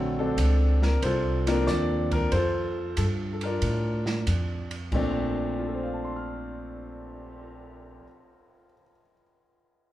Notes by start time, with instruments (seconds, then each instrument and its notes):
Already playing: upright bass A#1, grand piano D3 F#3 A3 C4
0.19 grand piano C4 D4 A4
0.37 upright bass C#2, hi-hat pedal, ride
0.82 grand piano A#4, snare
1.02 upright bass C2, grand piano F4 A4 C5, ride
1.47 grand piano F3 A#3 C4 D4 A#4, snare, ride
1.67 upright bass D#2, grand piano D5, snare, hi-hat pedal
2.12 grand piano A#4, kick, ride
2.32 upright bass F2, grand piano F4 A4 C5, ride
2.97 upright bass G2, grand piano A4, hi-hat pedal, ride
3.33 grand piano A4
3.41 grand piano A#4, ride
3.45 grand piano D4 F4
3.62 upright bass A2, ride
4.06 snare
4.27 upright bass F2, hi-hat pedal, ride
4.71 ride
4.92 upright bass A#1, grand piano A#2 A3 C4 D4, kick, crash
5.36 cymbal swell
5.59 grand piano F4
5.66 grand piano A4
5.75 grand piano C5
5.83 grand piano F5
5.94 grand piano A5
6.04 grand piano C6
6.16 grand piano F6